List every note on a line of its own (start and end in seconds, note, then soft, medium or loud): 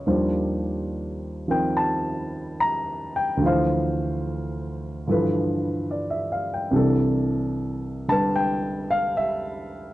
0.00 0.23 C#5 soft
0.06 3.41 D#2 soft
0.06 1.46 D#3 soft
0.06 1.47 F3 soft
0.06 3.42 G3 soft
0.06 3.42 D4 soft
0.06 3.42 C5 soft
1.48 3.42 D#3 soft
1.48 3.41 F3 soft
1.48 3.43 C4 soft
1.48 3.43 A#4 soft
1.48 1.76 G5 medium
1.77 2.61 A5 medium
2.60 3.17 A#5 medium
3.16 3.43 G5 medium
3.37 5.04 D2 soft
3.37 5.06 D3 soft
3.42 5.08 E3 soft
3.42 5.07 F3 soft
3.42 6.30 F5 soft
3.47 5.09 C5 soft
5.07 6.72 G2 soft
5.07 6.72 D3 soft
5.07 6.72 E3 soft
5.07 6.73 F3 soft
5.07 6.74 A4 soft
5.11 6.74 B4 soft
5.91 6.29 D5 soft
6.10 6.46 E5 soft
6.32 6.57 F5 soft
6.54 6.81 G5 soft
6.71 9.94 C2 soft
6.71 9.94 C3 soft
6.71 9.94 E3 soft
6.71 9.94 D4 soft
6.76 9.94 A4 soft
8.08 9.94 D3 soft
8.08 9.94 G3 soft
8.08 9.94 G4 soft
8.08 9.94 B4 soft
8.08 8.36 A5 medium
8.36 8.87 G5 medium
8.91 9.18 F5 medium
9.17 9.94 E5 medium